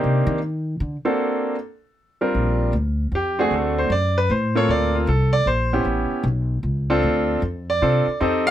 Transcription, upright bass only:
0.04 0.26 C3 medium
0.27 0.75 D#3 loud
0.80 0.95 D3 medium
2.35 2.72 A#1 medium
2.73 3.11 D2 medium
3.12 3.50 F2 medium
3.51 3.89 D2 medium
3.90 4.28 F#2 medium
4.30 4.68 A2 medium
4.69 5.07 D2 medium
5.07 5.45 C2 medium
5.46 5.84 A#1 medium
5.85 6.10 A1 medium
6.11 muted upright bass stroke soft
6.24 6.62 B1 loud
6.63 7.01 C#2 medium
7.03 7.41 D2 medium
7.42 7.80 F2 medium
7.82 8.06 C3 medium
8.07 muted upright bass stroke soft
8.21 8.51 F2 medium

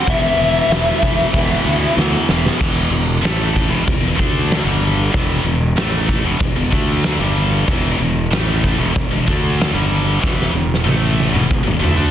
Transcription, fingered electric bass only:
0.07 0.28 E1 loud
0.39 0.59 E1 medium
0.69 0.90 E1 medium
1.03 1.23 E1 loud
1.34 1.54 E1 loud
1.65 1.85 D2 medium
1.97 2.17 D2 medium
2.29 2.49 E1 medium
2.61 2.90 E1 medium
2.91 3.20 E1 medium
3.23 3.67 A1 medium
3.71 3.85 E1 medium
3.88 4.00 E1 medium
4.00 4.16 E1 medium
4.19 4.63 D2 medium
4.65 5.09 G1 medium
5.14 5.43 E1 medium
5.44 5.74 E1 medium
5.76 6.21 A1 medium
6.24 6.39 E1 medium
6.40 6.55 E1 medium
6.55 6.71 E1 medium
6.73 7.17 D2 medium
7.20 7.64 G1 medium
7.68 7.97 E1 medium
7.99 8.29 E1 medium
8.32 8.76 A1 medium
8.79 8.94 E1 medium
8.96 9.10 E1 medium
9.10 9.25 E1 medium
9.28 9.72 D2 medium
9.74 10.19 G1 medium
10.24 10.53 E1 medium
10.55 10.84 E1 medium
10.85 11.30 A1 medium
11.34 11.49 E1 medium
11.50 11.65 E1 medium
11.66 11.80 E1 medium
11.81 11.96 D2 medium
11.98 12.11 D2 medium

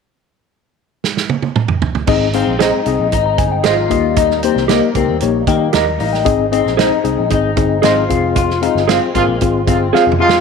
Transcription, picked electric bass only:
2.08 2.42 G#1 loud
2.47 2.70 A#1 medium
2.86 2.98 C2 medium
3.00 3.11 A#1 medium
3.13 3.36 G#1 medium
3.38 3.61 G1 medium
3.65 3.88 G#1 medium
3.91 4.48 D#2 medium
4.56 4.79 C2 medium
4.95 5.07 C#2 medium
5.09 5.20 D#2 medium
5.22 5.45 A#1 medium
5.47 5.70 D#3 medium
5.75 5.97 D#2 medium
6.00 6.23 A1 medium
6.26 6.60 G#1 loud
6.66 6.89 A#1 medium
7.04 7.16 C2 medium
7.19 7.30 A#1 medium
7.32 7.54 G#1 medium
7.57 7.80 G1 medium
7.84 8.07 G#1 medium
8.10 8.67 F1 medium
8.75 8.98 G1 medium
9.15 9.26 G#1 medium
9.27 9.39 A#1 medium
9.42 9.64 G#1 medium
9.67 9.90 G1 medium
9.94 muted picked electric bass stroke soft
10.07 10.18 F1 medium
10.21 10.41 F2 medium

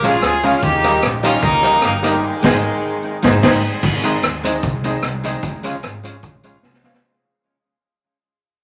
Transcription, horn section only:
0.05 0.22 F4 medium
0.05 0.22 G#4 medium
0.23 0.42 F4 medium
0.23 0.43 G#4 loud
0.44 0.63 C#4 medium
0.44 0.63 F4 medium
0.62 1.03 D#4 medium
0.62 1.03 G4 loud
1.23 1.41 C#4 medium
1.23 1.41 F4 medium
1.43 1.80 A#3 medium
1.43 1.80 D#4 loud
1.83 1.93 A#3 medium
1.83 1.93 D#4 medium
2.05 3.39 D#3 medium
2.05 3.39 G#3 medium

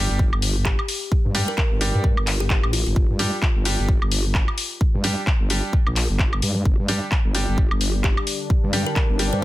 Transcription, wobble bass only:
0.10 0.31 G1 loud
0.33 0.64 G1 medium
0.66 0.77 G1 loud
1.25 1.46 G2 loud
1.71 1.92 G1 loud
1.94 2.15 G2 loud
2.17 2.48 G1 medium
2.50 2.61 G1 loud
2.64 2.85 A1 loud
2.87 2.95 G1 loud
2.96 3.08 G1 loud
3.10 3.31 G2 loud
3.56 3.77 G1 loud
3.79 4.00 G1 loud
4.02 4.33 G1 loud
4.35 4.46 G1 loud
4.94 5.15 G2 loud
5.40 5.61 G1 loud
5.87 6.08 A#1 loud
6.10 6.41 G1 loud
6.42 6.64 G2 medium
6.65 6.77 G1 loud
6.79 7.00 G2 loud
7.25 7.46 G1 loud
7.48 7.69 G1 loud
7.71 8.02 G1 medium
8.04 8.15 G1 loud
8.64 8.84 G2 loud
9.10 9.31 G1 loud
9.33 9.45 G2 loud

